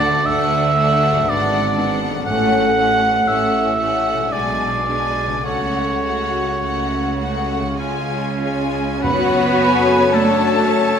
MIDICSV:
0, 0, Header, 1, 13, 480
1, 0, Start_track
1, 0, Key_signature, 3, "minor"
1, 0, Tempo, 1001669
1, 1089, Time_signature, 3, 2, 24, 8
1, 1566, Tempo, 1041667
1, 2046, Tempo, 1156069
1, 3486, Tempo, 1244813
1, 3966, Tempo, 1100917
1, 4826, End_track
2, 0, Start_track
2, 0, Title_t, "Flute section"
2, 0, Program_c, 0, 73
2, 3486, Note_on_c, 0, 73, 43
2, 3951, Note_off_c, 0, 73, 0
2, 3969, Note_on_c, 0, 83, 57
2, 4446, Note_on_c, 0, 81, 47
2, 4450, Note_off_c, 0, 83, 0
2, 4826, Note_off_c, 0, 81, 0
2, 4826, End_track
3, 0, Start_track
3, 0, Title_t, "Violin section"
3, 0, Program_c, 1, 48
3, 0, Note_on_c, 1, 78, 49
3, 124, Note_off_c, 1, 78, 0
3, 135, Note_on_c, 1, 78, 48
3, 373, Note_off_c, 1, 78, 0
3, 378, Note_on_c, 1, 78, 46
3, 614, Note_off_c, 1, 78, 0
3, 622, Note_on_c, 1, 78, 49
3, 847, Note_off_c, 1, 78, 0
3, 852, Note_on_c, 1, 78, 43
3, 1081, Note_off_c, 1, 78, 0
3, 1087, Note_on_c, 1, 78, 48
3, 1321, Note_off_c, 1, 78, 0
3, 1329, Note_on_c, 1, 78, 43
3, 1562, Note_off_c, 1, 78, 0
3, 1571, Note_on_c, 1, 78, 39
3, 1797, Note_off_c, 1, 78, 0
3, 1803, Note_on_c, 1, 78, 39
3, 2042, Note_off_c, 1, 78, 0
3, 2049, Note_on_c, 1, 80, 38
3, 2275, Note_off_c, 1, 80, 0
3, 2286, Note_on_c, 1, 80, 35
3, 2518, Note_off_c, 1, 80, 0
3, 2524, Note_on_c, 1, 78, 35
3, 2760, Note_off_c, 1, 78, 0
3, 2766, Note_on_c, 1, 78, 31
3, 3000, Note_off_c, 1, 78, 0
3, 3010, Note_on_c, 1, 78, 33
3, 3242, Note_off_c, 1, 78, 0
3, 3247, Note_on_c, 1, 78, 30
3, 3484, Note_off_c, 1, 78, 0
3, 3486, Note_on_c, 1, 80, 32
3, 3723, Note_off_c, 1, 80, 0
3, 3737, Note_on_c, 1, 80, 31
3, 3967, Note_off_c, 1, 80, 0
3, 3976, Note_on_c, 1, 78, 46
3, 4200, Note_off_c, 1, 78, 0
3, 4222, Note_on_c, 1, 80, 48
3, 4450, Note_on_c, 1, 81, 46
3, 4455, Note_off_c, 1, 80, 0
3, 4826, Note_off_c, 1, 81, 0
3, 4826, End_track
4, 0, Start_track
4, 0, Title_t, "Oboe"
4, 0, Program_c, 2, 68
4, 0, Note_on_c, 2, 74, 84
4, 123, Note_on_c, 2, 76, 88
4, 130, Note_off_c, 2, 74, 0
4, 618, Note_on_c, 2, 74, 71
4, 625, Note_off_c, 2, 76, 0
4, 969, Note_off_c, 2, 74, 0
4, 1081, Note_on_c, 2, 78, 80
4, 1570, Note_on_c, 2, 76, 71
4, 1577, Note_off_c, 2, 78, 0
4, 2050, Note_on_c, 2, 74, 55
4, 2056, Note_off_c, 2, 76, 0
4, 2519, Note_off_c, 2, 74, 0
4, 2521, Note_on_c, 2, 73, 57
4, 3471, Note_off_c, 2, 73, 0
4, 3490, Note_on_c, 2, 61, 42
4, 3965, Note_on_c, 2, 71, 67
4, 3972, Note_off_c, 2, 61, 0
4, 4455, Note_on_c, 2, 69, 54
4, 4461, Note_off_c, 2, 71, 0
4, 4826, Note_off_c, 2, 69, 0
4, 4826, End_track
5, 0, Start_track
5, 0, Title_t, "Clarinet"
5, 0, Program_c, 3, 71
5, 3973, Note_on_c, 3, 73, 45
5, 4826, Note_off_c, 3, 73, 0
5, 4826, End_track
6, 0, Start_track
6, 0, Title_t, "French horn section"
6, 0, Program_c, 4, 60
6, 3972, Note_on_c, 4, 73, 46
6, 3974, Note_on_c, 4, 66, 43
6, 4434, Note_off_c, 4, 73, 0
6, 4435, Note_off_c, 4, 66, 0
6, 4450, Note_on_c, 4, 73, 45
6, 4454, Note_on_c, 4, 66, 44
6, 4826, Note_off_c, 4, 66, 0
6, 4826, Note_off_c, 4, 73, 0
6, 4826, End_track
7, 0, Start_track
7, 0, Title_t, "Violin section"
7, 0, Program_c, 5, 48
7, 0, Note_on_c, 5, 62, 44
7, 122, Note_off_c, 5, 62, 0
7, 130, Note_on_c, 5, 62, 46
7, 364, Note_off_c, 5, 62, 0
7, 370, Note_on_c, 5, 62, 48
7, 610, Note_off_c, 5, 62, 0
7, 619, Note_on_c, 5, 62, 49
7, 843, Note_off_c, 5, 62, 0
7, 848, Note_on_c, 5, 62, 44
7, 1082, Note_off_c, 5, 62, 0
7, 1093, Note_on_c, 5, 61, 52
7, 1324, Note_off_c, 5, 61, 0
7, 1333, Note_on_c, 5, 61, 42
7, 1564, Note_off_c, 5, 61, 0
7, 1571, Note_on_c, 5, 61, 39
7, 1798, Note_off_c, 5, 61, 0
7, 1808, Note_on_c, 5, 61, 37
7, 2045, Note_off_c, 5, 61, 0
7, 2054, Note_on_c, 5, 62, 35
7, 2277, Note_off_c, 5, 62, 0
7, 2287, Note_on_c, 5, 62, 33
7, 2518, Note_off_c, 5, 62, 0
7, 2527, Note_on_c, 5, 66, 37
7, 2762, Note_off_c, 5, 66, 0
7, 2770, Note_on_c, 5, 66, 33
7, 3002, Note_off_c, 5, 66, 0
7, 3010, Note_on_c, 5, 66, 31
7, 3241, Note_off_c, 5, 66, 0
7, 3251, Note_on_c, 5, 66, 28
7, 3486, Note_off_c, 5, 66, 0
7, 3495, Note_on_c, 5, 65, 30
7, 3728, Note_off_c, 5, 65, 0
7, 3733, Note_on_c, 5, 65, 29
7, 3965, Note_off_c, 5, 65, 0
7, 3969, Note_on_c, 5, 73, 46
7, 3970, Note_on_c, 5, 66, 45
7, 4433, Note_off_c, 5, 66, 0
7, 4433, Note_off_c, 5, 73, 0
7, 4448, Note_on_c, 5, 69, 49
7, 4448, Note_on_c, 5, 73, 44
7, 4680, Note_off_c, 5, 73, 0
7, 4685, Note_on_c, 5, 73, 47
7, 4686, Note_off_c, 5, 69, 0
7, 4826, Note_off_c, 5, 73, 0
7, 4826, End_track
8, 0, Start_track
8, 0, Title_t, "Harp"
8, 0, Program_c, 6, 46
8, 0, Note_on_c, 6, 50, 48
8, 0, Note_on_c, 6, 54, 43
8, 0, Note_on_c, 6, 62, 40
8, 0, Note_on_c, 6, 66, 39
8, 0, Note_on_c, 6, 69, 42
8, 533, Note_on_c, 6, 44, 48
8, 548, Note_off_c, 6, 54, 0
8, 554, Note_on_c, 6, 54, 39
8, 571, Note_off_c, 6, 62, 0
8, 577, Note_on_c, 6, 62, 37
8, 593, Note_off_c, 6, 50, 0
8, 597, Note_on_c, 6, 71, 39
8, 626, Note_off_c, 6, 69, 0
8, 1007, Note_on_c, 6, 45, 44
8, 1019, Note_off_c, 6, 66, 0
8, 1022, Note_off_c, 6, 54, 0
8, 1028, Note_on_c, 6, 54, 37
8, 1049, Note_on_c, 6, 61, 37
8, 1067, Note_off_c, 6, 44, 0
8, 1070, Note_on_c, 6, 69, 39
8, 1088, Note_off_c, 6, 62, 0
8, 1098, Note_off_c, 6, 71, 0
8, 1964, Note_on_c, 6, 47, 35
8, 1986, Note_on_c, 6, 56, 31
8, 2006, Note_on_c, 6, 62, 28
8, 2027, Note_off_c, 6, 45, 0
8, 2028, Note_on_c, 6, 68, 31
8, 2037, Note_off_c, 6, 54, 0
8, 2047, Note_off_c, 6, 61, 0
8, 2056, Note_off_c, 6, 69, 0
8, 2444, Note_on_c, 6, 49, 33
8, 2462, Note_on_c, 6, 54, 27
8, 2481, Note_on_c, 6, 66, 27
8, 2500, Note_on_c, 6, 69, 27
8, 2501, Note_off_c, 6, 47, 0
8, 2511, Note_off_c, 6, 56, 0
8, 2520, Note_off_c, 6, 62, 0
8, 2530, Note_off_c, 6, 68, 0
8, 3409, Note_off_c, 6, 49, 0
8, 3414, Note_on_c, 6, 49, 30
8, 3431, Note_on_c, 6, 56, 25
8, 3452, Note_on_c, 6, 65, 25
8, 3470, Note_on_c, 6, 68, 25
8, 3478, Note_off_c, 6, 54, 0
8, 3488, Note_off_c, 6, 66, 0
8, 3497, Note_off_c, 6, 69, 0
8, 3951, Note_off_c, 6, 49, 0
8, 3959, Note_off_c, 6, 56, 0
8, 3969, Note_off_c, 6, 65, 0
8, 3969, Note_on_c, 6, 42, 44
8, 3979, Note_off_c, 6, 68, 0
8, 4089, Note_on_c, 6, 49, 31
8, 4211, Note_on_c, 6, 57, 34
8, 4329, Note_on_c, 6, 61, 36
8, 4448, Note_on_c, 6, 66, 39
8, 4570, Note_on_c, 6, 69, 39
8, 4687, Note_on_c, 6, 73, 37
8, 4800, Note_off_c, 6, 69, 0
8, 4806, Note_on_c, 6, 69, 36
8, 4826, Note_off_c, 6, 42, 0
8, 4826, Note_off_c, 6, 49, 0
8, 4826, Note_off_c, 6, 57, 0
8, 4826, Note_off_c, 6, 61, 0
8, 4826, Note_off_c, 6, 66, 0
8, 4826, Note_off_c, 6, 69, 0
8, 4826, Note_off_c, 6, 73, 0
8, 4826, End_track
9, 0, Start_track
9, 0, Title_t, "Viola section"
9, 0, Program_c, 7, 48
9, 0, Note_on_c, 7, 57, 46
9, 115, Note_off_c, 7, 57, 0
9, 121, Note_on_c, 7, 57, 49
9, 364, Note_off_c, 7, 57, 0
9, 369, Note_on_c, 7, 57, 46
9, 609, Note_off_c, 7, 57, 0
9, 614, Note_on_c, 7, 59, 48
9, 844, Note_off_c, 7, 59, 0
9, 849, Note_on_c, 7, 59, 45
9, 1083, Note_off_c, 7, 59, 0
9, 1088, Note_on_c, 7, 57, 49
9, 1318, Note_off_c, 7, 57, 0
9, 1323, Note_on_c, 7, 57, 40
9, 1558, Note_off_c, 7, 57, 0
9, 1564, Note_on_c, 7, 57, 42
9, 1789, Note_off_c, 7, 57, 0
9, 1795, Note_on_c, 7, 57, 38
9, 2038, Note_off_c, 7, 57, 0
9, 2045, Note_on_c, 7, 56, 37
9, 2271, Note_off_c, 7, 56, 0
9, 2276, Note_on_c, 7, 56, 34
9, 2513, Note_off_c, 7, 56, 0
9, 2516, Note_on_c, 7, 57, 35
9, 2756, Note_off_c, 7, 57, 0
9, 2761, Note_on_c, 7, 57, 29
9, 2991, Note_off_c, 7, 57, 0
9, 2996, Note_on_c, 7, 57, 30
9, 3231, Note_off_c, 7, 57, 0
9, 3236, Note_on_c, 7, 57, 32
9, 3478, Note_off_c, 7, 57, 0
9, 3480, Note_on_c, 7, 56, 30
9, 3717, Note_off_c, 7, 56, 0
9, 3722, Note_on_c, 7, 56, 33
9, 3959, Note_off_c, 7, 56, 0
9, 3962, Note_on_c, 7, 66, 54
9, 4429, Note_off_c, 7, 66, 0
9, 4443, Note_on_c, 7, 62, 51
9, 4679, Note_off_c, 7, 62, 0
9, 4679, Note_on_c, 7, 61, 45
9, 4826, Note_off_c, 7, 61, 0
9, 4826, End_track
10, 0, Start_track
10, 0, Title_t, "Bassoon"
10, 0, Program_c, 8, 70
10, 3968, Note_on_c, 8, 54, 47
10, 4826, Note_off_c, 8, 54, 0
10, 4826, End_track
11, 0, Start_track
11, 0, Title_t, "Cello section"
11, 0, Program_c, 10, 48
11, 0, Note_on_c, 10, 50, 61
11, 71, Note_off_c, 10, 50, 0
11, 128, Note_on_c, 10, 50, 58
11, 560, Note_off_c, 10, 50, 0
11, 613, Note_on_c, 10, 44, 58
11, 1032, Note_off_c, 10, 44, 0
11, 1086, Note_on_c, 10, 45, 58
11, 1508, Note_off_c, 10, 45, 0
11, 1568, Note_on_c, 10, 45, 48
11, 1988, Note_off_c, 10, 45, 0
11, 2046, Note_on_c, 10, 47, 46
11, 2461, Note_off_c, 10, 47, 0
11, 2518, Note_on_c, 10, 49, 40
11, 2946, Note_off_c, 10, 49, 0
11, 3002, Note_on_c, 10, 49, 39
11, 3428, Note_off_c, 10, 49, 0
11, 3487, Note_on_c, 10, 49, 50
11, 3952, Note_off_c, 10, 49, 0
11, 3965, Note_on_c, 10, 59, 65
11, 4448, Note_off_c, 10, 59, 0
11, 4450, Note_on_c, 10, 57, 56
11, 4826, Note_off_c, 10, 57, 0
11, 4826, End_track
12, 0, Start_track
12, 0, Title_t, "Timpani"
12, 0, Program_c, 11, 47
12, 3973, Note_on_c, 11, 42, 58
12, 4672, Note_off_c, 11, 42, 0
12, 4826, End_track
13, 0, Start_track
13, 0, Title_t, "Double bass section"
13, 0, Program_c, 12, 48
13, 0, Note_on_c, 12, 38, 57
13, 70, Note_off_c, 12, 38, 0
13, 125, Note_on_c, 12, 38, 60
13, 558, Note_off_c, 12, 38, 0
13, 613, Note_on_c, 12, 32, 57
13, 1032, Note_off_c, 12, 32, 0
13, 1083, Note_on_c, 12, 33, 55
13, 1506, Note_off_c, 12, 33, 0
13, 1561, Note_on_c, 12, 33, 49
13, 1985, Note_off_c, 12, 33, 0
13, 2043, Note_on_c, 12, 35, 44
13, 2460, Note_off_c, 12, 35, 0
13, 2516, Note_on_c, 12, 37, 37
13, 2944, Note_off_c, 12, 37, 0
13, 3001, Note_on_c, 12, 37, 40
13, 3428, Note_off_c, 12, 37, 0
13, 3485, Note_on_c, 12, 37, 34
13, 3912, Note_off_c, 12, 37, 0
13, 3969, Note_on_c, 12, 42, 46
13, 4826, Note_off_c, 12, 42, 0
13, 4826, End_track
0, 0, End_of_file